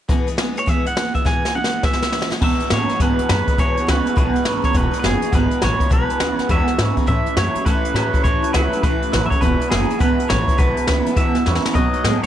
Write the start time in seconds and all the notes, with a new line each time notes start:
0.09 E2 B2 E3 G#3 B3 G#4, kick, closed hi-hat
0.27 E3 G#3 B3 G#4, closed hi-hat
0.37 E2 C#3 E3 G#3 B3 G#4, snare, closed hi-hat
0.56 E3 G#3 B3 G#4 C#5, closed hi-hat
0.66 E2 B2 E3 G#3 B3 G#4 E5, kick, closed hi-hat
0.85 E3 G#3 B3 G#4 F#5, closed hi-hat
0.95 E2 C#3 E3 G#3 B3 G#4, snare, closed hi-hat
1.14 E3 G#3 B3 G#4 E5, kick, closed hi-hat
1.25 E2 B2 E3 G#3 B3 G#4 G#5, kick, snare
1.44 E3 G#3 B3 G#4, snare
1.55 E2 C#3 E3 G#3 B3 G#4 F#5
1.64 snare
1.73 E3 G#3 B3 G#4
1.83 E2 B2 E3 G#3 B3 G#4 E5, kick, snare
1.93 snare
2.02 E3 G#3 B3 G#4, snare
2.12 E2 C#3 E3 G#3 B3 G#4, snare
2.22 snare
2.31 E3 G#3 B3 G#4, snare
2.41 E2 B2 E3 G#3 B3 G#4 E5, kick, crash
2.60 E3 G#3 B3 G#4, muted upright bass stroke, closed hi-hat
2.70 E2 A2 C#3 E3 G#3 B3 G#4 C#5, snare, closed hi-hat
2.89 E3 G#3 B3 G#4, muted upright bass stroke, snare, closed hi-hat
3.00 E2 G#2 B2 E3 G#3 B3 G#4 B4, kick, snare, closed hi-hat
3.19 E3 G#3 B3 G#4, muted upright bass stroke, closed hi-hat
3.29 E2 F#2 C#3 E3 G#3 B3 G#4 B4, snare, closed hi-hat
3.48 E3 G#3 B3 G#4, muted upright bass stroke, kick, closed hi-hat
3.58 E2 B2 E3 G#3 B3 G#4 C#5, kick, closed hi-hat
3.77 E3 G#3 B3 G#4, muted upright bass stroke, closed hi-hat
3.87 C#2 E2 C#3 E3 G#3 B3 G#4 B4, snare, closed hi-hat
4.05 E3 G#3 B3 G#4, closed hi-hat
4.16 B1 E2 B2 E3 G#3 B3 G#4 B4, kick, closed hi-hat
4.34 E3 G#3 B3 G#4, muted upright bass stroke, closed hi-hat
4.44 G#1 E2 C#3 E3 G#3 B3 G#4, snare, closed hi-hat
4.62 E3 G#3 B3 G#4 C#5, kick, snare, closed hi-hat
4.73 E1 E2 B2 E3 G#3 B3 G#4 B4, kick, closed hi-hat
4.91 E3 G#3 B3 G#4, muted upright bass stroke, closed hi-hat
4.99 F#1 E2 E3 G#3 B4
5.04 C#3 B3 G#4, snare, closed hi-hat
5.21 E3 G#3 B3 G#4, muted upright bass stroke, closed hi-hat
5.32 G#1 E2 B2 E3 G#3 B3 G#4 B4, kick, snare, closed hi-hat
5.50 E3 G#3 B3 G#4, muted upright bass stroke, closed hi-hat
5.61 A1 E2 C#3 E3 G#3 B3 G#4 C#5, snare, closed hi-hat
5.79 E3 G#3 B3 G#4, kick, closed hi-hat
5.89 B1 E2 B2 E3 G#3 B3 G#4 B4, kick, closed hi-hat
6.09 E3 G#3 B3 G#4, muted upright bass stroke, closed hi-hat
6.20 D2 E2 C#3 E3 G#3 B3 G#4, snare, closed hi-hat
6.38 E3 G#3 B3 G#4, muted upright bass stroke, snare, closed hi-hat
6.49 E2 B2 E3 G#3 B3 G#4 E5, kick, snare, closed hi-hat
6.68 E3 G#3 B3 G#4, muted upright bass stroke, snare, closed hi-hat
6.78 E2 G#2 C#3 E3 G#3 B3 G#4, snare, closed hi-hat
6.97 E3 G#3 B3 G#4, kick, closed hi-hat
7.06 A2 E3 A3 C#4 E4 E5, kick, closed hi-hat
7.26 A3 C#4 E4, muted upright bass stroke, closed hi-hat
7.36 F#2 A2 E3 F#3 A3 C#4 E4 C#5, snare, closed hi-hat
7.55 A3 C#4 E4, muted upright bass stroke, closed hi-hat
7.66 G#2 A2 E3 A3 C#4 E4 B4, kick, snare, closed hi-hat
7.85 A3 C#4 E4, closed hi-hat
7.94 A2 E3 F#3 A3 C#4 E4 B4, snare, closed hi-hat
8.13 A3 C#4 E4, muted upright bass stroke, kick, closed hi-hat
8.24 E2 A2 E3 A3 C#4 E4 C#5, kick, closed hi-hat
8.42 A3 C#4 E4, closed hi-hat
8.53 C#2 A2 E3 F#3 A3 C#4 E4 B4, snare, closed hi-hat
8.72 A3 C#4 E4, closed hi-hat
8.83 B1 A2 E3 A3 C#4 E4 B4, kick, snare, closed hi-hat
9.02 A3 C#4 E4, muted upright bass stroke, closed hi-hat
9.11 A1 A2 E3 F#3 A3 C#4 E4, snare, closed hi-hat
9.26 E5
9.30 A3 C#4 E4 C#5, muted upright bass stroke, kick, closed hi-hat
9.41 E1 E2 B2 E3 G#3 B3 E4 B4, kick, closed hi-hat
9.60 E3 G#3 B3 E4, muted upright bass stroke, closed hi-hat
9.70 F#1 E2 C#3 E3 G#3 B3 E4 G#4, snare, closed hi-hat
9.89 E3 G#3 B3 E4, muted upright bass stroke, closed hi-hat
9.99 G#1 E2 B2 E3 G#3 B3 E4 B4, kick, closed hi-hat
10.18 E3 G#3 B3 E4, closed hi-hat
10.29 A1 E2 C#3 E3 G#3 B3 E4 C#5, snare, closed hi-hat
10.48 E3 G#3 B3 E4, kick, closed hi-hat
10.58 B1 E2 B2 E3 G#3 B3 E4 B4, kick, closed hi-hat
10.77 E3 G#3 B3 E4, muted upright bass stroke, closed hi-hat
10.87 C#2 E2 C#3 E3 G#3 B3 E4, snare, closed hi-hat
11.06 E3 G#3 B3 E4, muted upright bass stroke, closed hi-hat
11.16 D2 E2 B2 E3 G#3 B3 E4 E5, kick, closed hi-hat
11.35 E3 G#3 B3 E4, snare, closed hi-hat
11.45 E2 C#3 E3 G#3 B3 E4, snare
11.55 snare
11.65 E3 G#3 B3 E4, muted upright bass stroke, snare
11.75 B2 F#3 B3 D#4 F#4 D#5, kick, closed hi-hat
11.93 B3 D#4 F#4, muted upright bass stroke, closed hi-hat
12.04 A2 B2 F#3 G#3 B3 D#4 F#4, snare, closed hi-hat
12.23 muted upright bass stroke